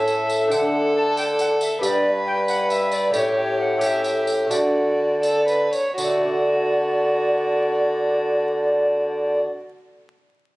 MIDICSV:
0, 0, Header, 1, 6, 480
1, 0, Start_track
1, 0, Key_signature, 2, "major"
1, 0, Tempo, 437637
1, 558, Time_signature, 6, 3, 24, 8
1, 3439, Tempo, 456969
1, 4879, Tempo, 485437
1, 5839, Tempo, 508044
1, 10643, End_track
2, 0, Start_track
2, 0, Title_t, "Recorder"
2, 0, Program_c, 0, 74
2, 0, Note_on_c, 0, 76, 74
2, 562, Note_on_c, 0, 79, 74
2, 578, Note_off_c, 0, 76, 0
2, 615, Note_on_c, 0, 78, 81
2, 626, Note_off_c, 0, 79, 0
2, 1039, Note_off_c, 0, 78, 0
2, 1051, Note_on_c, 0, 81, 97
2, 1278, Note_off_c, 0, 81, 0
2, 1290, Note_on_c, 0, 79, 92
2, 1355, Note_off_c, 0, 79, 0
2, 1538, Note_on_c, 0, 78, 85
2, 1604, Note_off_c, 0, 78, 0
2, 1775, Note_on_c, 0, 76, 73
2, 2000, Note_off_c, 0, 76, 0
2, 2014, Note_on_c, 0, 74, 91
2, 2275, Note_off_c, 0, 74, 0
2, 2489, Note_on_c, 0, 79, 94
2, 2555, Note_off_c, 0, 79, 0
2, 2728, Note_on_c, 0, 78, 88
2, 2957, Note_off_c, 0, 78, 0
2, 2962, Note_on_c, 0, 76, 88
2, 3209, Note_on_c, 0, 74, 83
2, 3225, Note_off_c, 0, 76, 0
2, 3444, Note_off_c, 0, 74, 0
2, 3449, Note_on_c, 0, 73, 85
2, 3904, Note_off_c, 0, 73, 0
2, 3920, Note_on_c, 0, 78, 93
2, 4151, Note_off_c, 0, 78, 0
2, 4151, Note_on_c, 0, 78, 73
2, 4203, Note_on_c, 0, 76, 80
2, 4213, Note_off_c, 0, 78, 0
2, 4621, Note_off_c, 0, 76, 0
2, 4881, Note_on_c, 0, 74, 73
2, 6039, Note_off_c, 0, 74, 0
2, 6317, Note_on_c, 0, 74, 68
2, 9569, Note_off_c, 0, 74, 0
2, 10643, End_track
3, 0, Start_track
3, 0, Title_t, "Violin"
3, 0, Program_c, 1, 40
3, 0, Note_on_c, 1, 69, 61
3, 542, Note_off_c, 1, 69, 0
3, 556, Note_on_c, 1, 69, 62
3, 1950, Note_off_c, 1, 69, 0
3, 1993, Note_on_c, 1, 71, 68
3, 3408, Note_off_c, 1, 71, 0
3, 3445, Note_on_c, 1, 67, 59
3, 4108, Note_off_c, 1, 67, 0
3, 4153, Note_on_c, 1, 67, 60
3, 4882, Note_on_c, 1, 66, 57
3, 4897, Note_off_c, 1, 67, 0
3, 5547, Note_off_c, 1, 66, 0
3, 5591, Note_on_c, 1, 69, 63
3, 5820, Note_off_c, 1, 69, 0
3, 5836, Note_on_c, 1, 71, 61
3, 6070, Note_off_c, 1, 71, 0
3, 6080, Note_on_c, 1, 73, 67
3, 6313, Note_off_c, 1, 73, 0
3, 6317, Note_on_c, 1, 66, 57
3, 9570, Note_off_c, 1, 66, 0
3, 10643, End_track
4, 0, Start_track
4, 0, Title_t, "Lute"
4, 0, Program_c, 2, 24
4, 0, Note_on_c, 2, 45, 47
4, 0, Note_on_c, 2, 57, 51
4, 0, Note_on_c, 2, 61, 55
4, 0, Note_on_c, 2, 69, 53
4, 510, Note_off_c, 2, 45, 0
4, 510, Note_off_c, 2, 57, 0
4, 518, Note_off_c, 2, 61, 0
4, 523, Note_on_c, 2, 57, 47
4, 528, Note_off_c, 2, 69, 0
4, 535, Note_on_c, 2, 62, 45
4, 549, Note_on_c, 2, 69, 40
4, 562, Note_on_c, 2, 50, 49
4, 1934, Note_off_c, 2, 57, 0
4, 1940, Note_off_c, 2, 62, 0
4, 1947, Note_off_c, 2, 69, 0
4, 1953, Note_off_c, 2, 50, 0
4, 1962, Note_on_c, 2, 59, 45
4, 1975, Note_on_c, 2, 62, 44
4, 1987, Note_on_c, 2, 67, 43
4, 2004, Note_on_c, 2, 43, 55
4, 3378, Note_off_c, 2, 59, 0
4, 3384, Note_off_c, 2, 62, 0
4, 3391, Note_off_c, 2, 67, 0
4, 3398, Note_on_c, 2, 57, 40
4, 3399, Note_off_c, 2, 43, 0
4, 3408, Note_on_c, 2, 61, 43
4, 3424, Note_on_c, 2, 67, 43
4, 3439, Note_on_c, 2, 45, 52
4, 4091, Note_off_c, 2, 57, 0
4, 4103, Note_on_c, 2, 57, 51
4, 4104, Note_off_c, 2, 61, 0
4, 4116, Note_off_c, 2, 67, 0
4, 4117, Note_on_c, 2, 61, 50
4, 4129, Note_on_c, 2, 67, 50
4, 4817, Note_off_c, 2, 57, 0
4, 4830, Note_on_c, 2, 57, 36
4, 4837, Note_off_c, 2, 45, 0
4, 4841, Note_off_c, 2, 61, 0
4, 4847, Note_off_c, 2, 67, 0
4, 4847, Note_on_c, 2, 62, 36
4, 4859, Note_on_c, 2, 66, 38
4, 4874, Note_on_c, 2, 50, 43
4, 6036, Note_off_c, 2, 50, 0
4, 6257, Note_off_c, 2, 57, 0
4, 6264, Note_off_c, 2, 62, 0
4, 6270, Note_off_c, 2, 66, 0
4, 6310, Note_on_c, 2, 50, 41
4, 6376, Note_on_c, 2, 57, 41
4, 6443, Note_on_c, 2, 62, 37
4, 6505, Note_off_c, 2, 62, 0
4, 6509, Note_on_c, 2, 66, 40
4, 6572, Note_on_c, 2, 74, 41
4, 9562, Note_off_c, 2, 50, 0
4, 9628, Note_off_c, 2, 57, 0
4, 9761, Note_off_c, 2, 66, 0
4, 9825, Note_off_c, 2, 74, 0
4, 10643, End_track
5, 0, Start_track
5, 0, Title_t, "Bassoon"
5, 0, Program_c, 3, 70
5, 0, Note_on_c, 3, 45, 52
5, 530, Note_off_c, 3, 45, 0
5, 566, Note_on_c, 3, 50, 60
5, 1812, Note_off_c, 3, 50, 0
5, 1998, Note_on_c, 3, 43, 62
5, 3411, Note_off_c, 3, 43, 0
5, 3432, Note_on_c, 3, 45, 61
5, 4834, Note_off_c, 3, 45, 0
5, 4872, Note_on_c, 3, 50, 55
5, 6050, Note_off_c, 3, 50, 0
5, 6313, Note_on_c, 3, 50, 57
5, 9566, Note_off_c, 3, 50, 0
5, 10643, End_track
6, 0, Start_track
6, 0, Title_t, "Drums"
6, 83, Note_on_c, 9, 54, 49
6, 192, Note_off_c, 9, 54, 0
6, 323, Note_on_c, 9, 54, 46
6, 433, Note_off_c, 9, 54, 0
6, 564, Note_on_c, 9, 54, 73
6, 674, Note_off_c, 9, 54, 0
6, 1286, Note_on_c, 9, 54, 53
6, 1395, Note_off_c, 9, 54, 0
6, 1524, Note_on_c, 9, 54, 53
6, 1634, Note_off_c, 9, 54, 0
6, 1764, Note_on_c, 9, 54, 51
6, 1874, Note_off_c, 9, 54, 0
6, 2007, Note_on_c, 9, 54, 78
6, 2116, Note_off_c, 9, 54, 0
6, 2722, Note_on_c, 9, 54, 52
6, 2831, Note_off_c, 9, 54, 0
6, 2963, Note_on_c, 9, 54, 50
6, 3073, Note_off_c, 9, 54, 0
6, 3198, Note_on_c, 9, 54, 50
6, 3308, Note_off_c, 9, 54, 0
6, 3440, Note_on_c, 9, 54, 78
6, 3546, Note_off_c, 9, 54, 0
6, 4148, Note_on_c, 9, 54, 52
6, 4253, Note_off_c, 9, 54, 0
6, 4391, Note_on_c, 9, 54, 50
6, 4496, Note_off_c, 9, 54, 0
6, 4633, Note_on_c, 9, 54, 49
6, 4738, Note_off_c, 9, 54, 0
6, 4881, Note_on_c, 9, 54, 78
6, 4980, Note_off_c, 9, 54, 0
6, 5595, Note_on_c, 9, 54, 49
6, 5694, Note_off_c, 9, 54, 0
6, 5839, Note_on_c, 9, 54, 45
6, 5933, Note_off_c, 9, 54, 0
6, 6074, Note_on_c, 9, 54, 48
6, 6168, Note_off_c, 9, 54, 0
6, 6312, Note_on_c, 9, 54, 76
6, 6407, Note_off_c, 9, 54, 0
6, 10643, End_track
0, 0, End_of_file